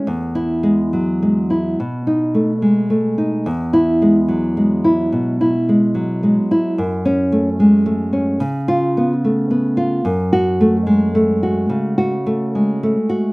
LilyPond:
\new Staff \with { instrumentName = "Nylon-string guitar" } { \time 4/4 \key e \major \tempo 4 = 72 << { \tuplet 3/2 { r8 e'4 } r4 \tuplet 3/2 { r8 dis'4 } r4 | \tuplet 3/2 { r8 e'4 } r2. | \tuplet 3/2 { r8 cis'4 } r4 \tuplet 3/2 { r8 eis'4 } r4 | \tuplet 3/2 { r8 fis'4 } r2. | } \\ { \tuplet 3/2 { e,4 gis8 fis8 gis8 e'8 b,4 a8 gis8 a8 dis'8 } | \tuplet 3/2 { e,4 gis8 fis8 gis8 e'8 b,8 e'8 gis8 fis8 gis8 e'8 } | \tuplet 3/2 { fis,4 a8 gis8 a8 cis'8 cis4 b8 a8 b8 eis'8 } | \tuplet 3/2 { fis,4 a8 gis8 a8 fis'8 cis8 fis'8 a8 gis8 a8 fis'8 } | } >> }